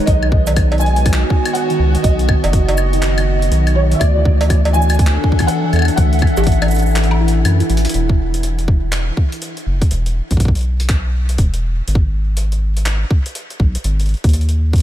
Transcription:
Already playing: D#4 G#4 B4
0.06 B1 D#3 B3 D#5, kick, closed hi-hat
0.23 D#3, high woodblock
0.27 F#4
0.32 kick
0.47 D#3, closed hi-hat, cowbell, shaker
0.56 kick, closed hi-hat, high woodblock
0.72 D#3, closed hi-hat, cowbell
0.78 D#3 G#5, closed hi-hat, shaker
0.86 closed hi-hat
0.96 closed hi-hat
1.06 D#3, kick, closed hi-hat, high woodblock
1.13 clap
1.30 D#3, kick
1.45 D#3, closed hi-hat, high woodblock
1.53 F#5, closed hi-hat
1.70 D#3 D#5, closed hi-hat
1.79 C#2
1.95 D#3, closed hi-hat
2.03 B1 D#5, kick, closed hi-hat
2.19 closed hi-hat
2.29 D#3, kick, high woodblock
2.44 F#1, closed hi-hat, cowbell
2.53 D#3, kick, closed hi-hat
2.69 D#3, closed hi-hat, cowbell
2.78 high woodblock, shaker
2.93 D#3, closed hi-hat
3.02 clap, closed hi-hat
3.18 D#3, closed hi-hat, high woodblock
3.27 D#3
3.42 closed hi-hat
3.52 B1 D#3, closed hi-hat
3.67 closed hi-hat, high woodblock
3.75 D#3 C#5
3.92 D#3 E5, closed hi-hat
3.99 D2 D4 D5, kick, closed hi-hat, high woodblock
4.16 E3
4.25 kick
4.40 E3 A4, closed hi-hat, cowbell
4.50 E3, kick, closed hi-hat, high woodblock
4.65 E5 F#5, closed hi-hat, cowbell
4.73 E3 G#5, shaker
4.82 shaker
4.90 closed hi-hat, high woodblock, shaker
4.94 shaker
4.99 E3, kick, closed hi-hat
5.07 clap
5.14 E3
5.24 kick
5.32 kick
5.39 E3, kick, closed hi-hat, high woodblock
5.47 F#5, closed hi-hat
5.64 E3
5.73 E2 E3, closed hi-hat, high woodblock
5.76 high woodblock
5.79 high woodblock
5.82 high woodblock
5.85 closed hi-hat, high woodblock
5.96 D2 E3 F#5, kick, closed hi-hat
6.13 closed hi-hat
6.19 E3, kick, closed hi-hat, high woodblock
6.27 closed hi-hat
6.37 A1 E3, closed hi-hat, cowbell, shaker
6.44 closed hi-hat
6.47 kick, closed hi-hat
6.52 closed hi-hat
6.62 E3, closed hi-hat, cowbell, high woodblock
6.68 closed hi-hat
6.71 closed hi-hat, shaker
6.75 closed hi-hat, shaker
6.79 closed hi-hat, shaker
6.83 shaker
6.87 E3, shaker
6.89 shaker
6.91 shaker
6.94 E3, clap, closed hi-hat, shaker
7.04 closed hi-hat
7.11 high woodblock
7.20 E4
7.28 closed hi-hat
7.45 F#2 E3, closed hi-hat, high woodblock
7.60 E4, closed hi-hat
7.70 A1 E3, closed hi-hat
7.77 closed hi-hat
7.85 E4, closed hi-hat
7.89 closed hi-hat
7.94 E1, closed hi-hat
8.09 kick
8.34 closed hi-hat
8.43 closed hi-hat
8.59 closed hi-hat
8.68 kick
8.92 clap, closed hi-hat
9.17 kick
9.32 closed hi-hat
9.42 closed hi-hat
9.57 closed hi-hat
9.66 F#1
9.82 kick, closed hi-hat
9.91 E1, closed hi-hat
10.06 closed hi-hat
10.31 B1, kick, closed hi-hat
10.37 kick, closed hi-hat
10.40 kick
10.45 kick
10.48 kick
10.55 closed hi-hat
10.57 closed hi-hat
10.59 closed hi-hat
10.61 closed hi-hat
10.63 closed hi-hat
10.80 closed hi-hat
10.89 kick, clap, closed hi-hat
11.29 closed hi-hat
11.38 E1, kick, closed hi-hat
11.54 closed hi-hat
11.88 G#1, closed hi-hat
11.95 kick
12.37 closed hi-hat
12.52 closed hi-hat
12.77 closed hi-hat
12.86 clap, closed hi-hat
13.11 kick
13.26 closed hi-hat
13.35 closed hi-hat
13.50 closed hi-hat
13.60 B1, kick
13.75 closed hi-hat
13.84 G#1, closed hi-hat
14.00 closed hi-hat
14.06 closed hi-hat
14.09 closed hi-hat
14.14 closed hi-hat
14.17 closed hi-hat
14.24 D#2, kick, closed hi-hat
14.29 closed hi-hat
14.33 closed hi-hat
14.41 closed hi-hat
14.49 closed hi-hat
14.73 kick, closed hi-hat
14.76 closed hi-hat
14.78 closed hi-hat

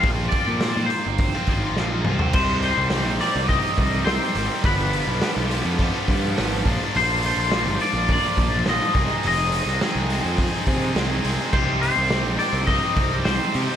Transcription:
Already playing: C4
0.03 A#1 A#2 F3, kick, open hi-hat
0.07 A#3 C4 F4
0.29 D5, kick, open hi-hat
0.33 F3 A#3 C4 F4
0.47 A#2
0.61 A#2 F3 A#3 C4 F4, snare, open hi-hat
0.76 A#2 A#3 C4 F4
0.86 A#3 C5, open hi-hat
0.91 muted overdriven electric guitar stroke
1.06 G1
1.18 C4, kick, open hi-hat
1.35 A#3 C4 F4
1.47 G#1 F3 A#3 C4 F4, kick, open hi-hat
1.65 A#3 C4 F4
1.76 A#1 A#2 F3 A#3 C4, snare
1.81 F4
1.94 A#3 C4 F4
2.05 C2 F3 A#3, mid tom
2.09 C4 F4
2.19 C4 F4, floor tom
2.23 A#3
2.33 C2 C3 D#3 G3 C4 D#4 G4 C5 D#5 G5 D6, kick, crash
2.62 C5, open hi-hat
2.78 C2
2.90 C3 D#3 G3 C4 D#4 G4, snare, open hi-hat
3.06 A#1
3.21 C3 D#3 G3 C4 D#4 G4 D5, open hi-hat
3.35 C2
3.49 C3 D#3 G3 C4 D#4 G4 D#5, kick, open hi-hat
3.78 C2, kick, open hi-hat
4.05 C2 C3 D#3 G3 C4 D#4 G4 C5, snare, open hi-hat
4.35 G#1 C3 D#3 G3 C4 D#4 G4, open hi-hat
4.63 G1 G2 D3 F3 G3 D4 B4 F5, kick, open hi-hat
4.67 B3 G4
4.93 open hi-hat
5.07 B1
5.21 G2 D3 F3 G3 B3 D4 G4, snare, open hi-hat
5.37 B1
5.51 G2 D3 F3 G3 B3 D4 G4, open hi-hat
5.65 F2
5.79 G2 D3 F3 G3 B3 D4 G4, kick, open hi-hat
6.08 G2, kick, open hi-hat
6.37 G#1 G2 D3 F3 G3 B3 D4 G4, snare, open hi-hat
6.64 A#1 A#2 D3 F3 A#3 D4 F4 C5 A#5, kick, open hi-hat
6.94 A#1 A#2 D3 F3 A#3 D4 F4 C5, open hi-hat
7.23 C5, open hi-hat
7.37 A#1
7.51 A#2 D3 F3 A#3 D4 F4, snare, open hi-hat
7.65 G1
7.79 A#2 D3 F3 D5, open hi-hat
7.83 A#3 D4 F4
7.93 A#1
8.08 A#2 D3 F3 A#3, kick, open hi-hat
8.12 D4 F4 D5
8.37 A#1, kick, open hi-hat
8.66 A#1 A#2 D3 F3 A#3 D4 F4 D#5, snare, open hi-hat
8.94 C2 C3 D#3 G#3 C4 D#4 G#4 C5 G#5 D#6, kick, open hi-hat
9.23 F1 C3 D#3 G#3 C4 D#4 G#4, open hi-hat
9.27 D#5
9.52 open hi-hat
9.66 C2
9.81 C3 D#3 G#3 C4 D#4 G#4, snare, open hi-hat
9.96 C2
10.10 C3 D#3 G#3 C4 D#4 G#4, open hi-hat
10.25 F2
10.38 C3 D#3 G#3 C4 D#4 G#4, kick, open hi-hat
10.67 C3, kick, open hi-hat
10.95 C2 C3 D#3 G#3 C4 D#4 G#4, snare, open hi-hat
11.24 C2 C3 D#3 G#3 C4 D#4 G#4, open hi-hat
11.53 C2 C3 D#3 G3 C4 D#4 G4 C5 D#5 G5 D6, kick, crash
11.81 C5, open hi-hat
11.97 C2
12.10 C3 D#3 G3 C4 D#4 G4, snare, open hi-hat
12.24 A#1
12.39 C3 D#3 G3 C4 D#4 G4 D5, open hi-hat
12.53 C2
12.67 C3 D#3 G3 C4 D#4 G4 D#5, kick, open hi-hat
12.97 C2, kick, open hi-hat
13.25 C2 C3 D#3 G3 C4 D#4 G4 C5, snare, open hi-hat
13.54 C3 D#3 G3 C4 D#4 G4, open hi-hat

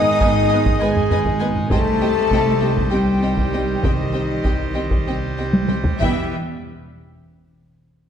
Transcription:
Already playing: G#1 D#3 G#3 D#4 G#4 D#5 D#6
0.20 G#1 B4 D#5 G#5, taiko
0.24 B3
0.49 D#5 G#5
0.53 B3 B4
0.66 taiko
0.79 G#1 G#3 B3 G#4 B4 D#5 G#5
0.96 taiko low-mid
1.10 B3 B4 D#5 G#5, taiko low-mid
1.25 taiko
1.39 B3 B4 D#5 G#5
1.55 taiko low-mid
1.70 C2 D#3 G3 A3 C4 G4 A4 C5 D#5 G5 A5, taiko
2.01 C4 G4 D#5 G5
2.31 C2 C4 G4 D#5 G5, taiko
2.60 C4 G4 D#5 G5
2.76 taiko
2.90 C2 G3 C4 G4 D#5 G5
3.22 C4 G4 D#5 G5
3.37 taiko
3.53 C4 G4 D#5 G5
3.82 C2 D#3 C4 D#4 G4 D#5 G5, taiko
4.13 C4 G4 D#5 G5
4.44 C2 C4 G4 D#5 G5, taiko
4.74 C4 G4 D#5 G5
4.91 taiko
5.07 C2 C4 G4 D#5 G5
5.37 C4 G4 D#5 G5
5.53 taiko high
5.68 C4 G4 D#5 G5, taiko high
5.84 taiko low
5.99 E2 E3 G3 B3 E4 G4 B4 E5 G5, taiko

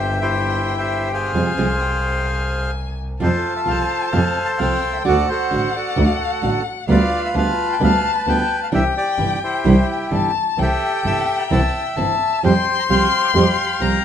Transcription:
Already playing: G1 G4 C5 E5 G5
0.21 E4 G4 C5
0.78 G4 C5 E5
1.13 G#4 C5 F5
1.34 F2 C3 F3 G#3 C4 F4 G#5
1.57 C2 C3 F3 G#3 C4 F4
1.81 G5
2.27 G#5
3.20 F2 C3 F3 A3 C4 F4 A4 C5 A5
3.56 E5
3.65 C2 C3 F3 A3 C4 F4 F5
3.69 A4 C5
4.01 G5
4.12 F2 C3 F3 A3 C4 F4 A4 C5 F5
4.46 A5
4.58 C2 C3 F3 A3 C4 F4 A4 C5 F5 G5
4.84 C2
4.93 E5
5.04 D2 D3 A3 D4 F#4 A4 D5 F#5
5.29 F#4 A4 C5
5.51 A1 D3 A3 D4 F#4
5.75 F#4 A4 D5
5.96 D2 D3 A3 D4 F#4
6.42 A1 D3 A3 D4 F#4
6.88 D2 D3 G3 B3 F4 B4 D5 F5
7.25 E5
7.34 D2 D3 G3 B3 F4 B4 F5 A5
7.73 G5
7.80 D2 D3 G3 B3 F4 B4 F5
8.14 B5
8.18 A5
8.26 D2 D3 G3 B3 F4 B4 G5
8.63 F5
8.72 C2 C3 E3 G3 D4 E4 G4 E5 G5
8.96 G4 D5
9.17 G1 C3 E3 G3 D4 E4
9.43 E4 G4 C5
9.64 C2 C3 E3 G3 D4 E4
10.10 G1 C3 E3 G3 D4 E4 A5
10.58 C2 C3 E3 A3 C4 E4 G4 A4 G5
10.62 E5
10.96 G5
11.04 G1 C3 E3 A3 C4 E4 E5 A5
11.39 A#5
11.50 C2 C3 E3 A3 C4 E4 E5 A5
11.97 G1 C3 E3 A3 C4 E4 A5
12.43 F2 F3 G3 C4 G4 C5 G5 C6
12.79 A#5
12.89 C2 F3 G3 C4 G4 F5 G5 C6
13.24 D6
13.34 F2 F3 G3 C4 G4 F5 G5 C6
13.42 D6
13.50 C6
13.80 C2 F3 G3 C4 G4 A#5

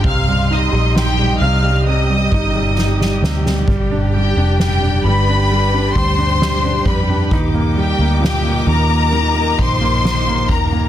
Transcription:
0.04 C2 C3 G4 D#5 F5 C6 F6, kick, ride
0.28 G3
0.50 D#4 D#5 D#6, ride
0.72 A#1 G3, ride
0.94 D#4 G4, snare, ride
0.99 G5
1.18 G3
1.41 C2 C3 F5 F6, ride
1.63 G3
1.86 C3 D#5 D#6, ride
2.10 G3
2.31 G1 D#4, kick, ride
2.55 G3
2.77 D#4, snare
2.99 G3, snare
3.22 D2 C3, snare
3.46 G3, snare
3.67 G1 G3 D5 G5, kick, ride
3.91 D4
4.13 G3 G4 G5, ride
4.36 F1 D4
4.58 G3 G5, snare, ride
4.62 G4
4.83 D4
5.04 G1 G3 B4 B5, ride
5.29 D4
5.49 G3, ride
5.73 D4
5.95 D2 G3 C5 C6, kick, ride
6.18 D4
6.40 G3, snare, ride
6.65 D4
6.86 F2 G3 B4 B5, kick, ride
7.09 D4, ride
7.31 D#2 D#4 D#5 D6, kick, ride
7.54 A#3
7.76 G3 G4 G5, ride
7.99 D2 A#3, ride
8.20 A#2, ride
8.24 G4 G5, snare
8.44 A#3
8.67 D#2 D#3 A#4 A#5
8.90 A#3
9.12 D#3, ride
9.35 A#3
9.58 A#1 D#3 C5 C6, kick, ride
9.81 A#3
10.03 D#3, snare, ride
10.27 A#3
10.49 D#2 D#3 A#4 A#5, kick
10.72 A#3

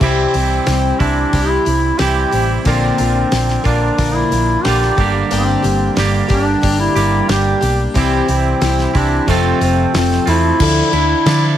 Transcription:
0.00 C2 C3 E3 G3 C4 E4 G4, kick, crash
0.34 C2 C4 E4 G4, open hi-hat
0.66 C2 G3 C4 E4 G4, snare, open hi-hat
0.99 C2 C3 E3 G3 C4 D4 E4 G4, kick, open hi-hat
1.33 C2 C3 G3 C4 E4 G4, kick, open hi-hat
1.49 E4
1.65 C2 C4 E4 G4, open hi-hat
1.98 C2 C3 E3 G3 C4 E4 G4, snare, open hi-hat
2.31 A1 C4 E4 G4, open hi-hat
2.65 A#1 A#2 D3 F3 A#3 C4 D4 A#4, kick, open hi-hat
2.69 F4
2.98 A#1 F3 A#3 D4 A#4, open hi-hat
3.31 A#1 F3 A#3 D4 A#4, snare, open hi-hat
3.48 snare
3.64 A#1 D3 F3 A#3 D4 F4 A#4, kick, open hi-hat
3.68 A#2
3.98 A#1 A#2 D3 F3 A#3 D4 A#4, kick, open hi-hat
4.14 E4
4.31 A#1 F3 A#3 D4 A#4, open hi-hat
4.64 A#1 A#2 D3 F3 A#3 D4 G4 A#4, snare, open hi-hat
4.68 F4
4.82 snare
4.97 G1 G2 D3 G3 A#3 D4 G4, kick, open hi-hat
5.31 G1 G2 D3 G3 A#3 C4 D4 G4, open hi-hat
5.62 G1 G3 A#3 D4 G4, open hi-hat
5.95 G1 G2 D3 G3 A#3 D4 G4, snare, open hi-hat
6.28 G1 G3 A#3 D4 G4, kick, open hi-hat
6.61 G1 G2 D3 G3 A#3 D4 G4, kick, open hi-hat
6.80 E4
6.96 G1 D3 G3 A#3 D4 G4, open hi-hat
7.00 G2
7.28 G1 G3 A#3 D4 G4, snare, open hi-hat
7.61 B1 G3 A#3 D4 G4, open hi-hat
7.94 C2 C3 E3 G3 C4 E4 G4, kick, open hi-hat
8.28 C2 C4 E4 G4, open hi-hat
8.61 C2 G3 C4 E4 G4, snare, open hi-hat
8.79 snare
8.95 C2 C3 E3 G3 C4 D4 E4 G4, kick, open hi-hat
9.26 F1 F2 C3 F3 A3 C4 F4 A4, kick, open hi-hat
9.61 F1 C4 F4 A4, open hi-hat
9.94 F1 F3 C4 F4 A4, snare, open hi-hat
10.11 snare
10.26 E2 F2 C3 F3 A3 E4 F4 A4, open hi-hat
10.31 C4
10.60 D2 D3 F3 D4 E4 A4, kick, crash
10.93 D2 D4 E4 A4, crash
11.26 D3 F3 D4 E4 A4, snare, crash

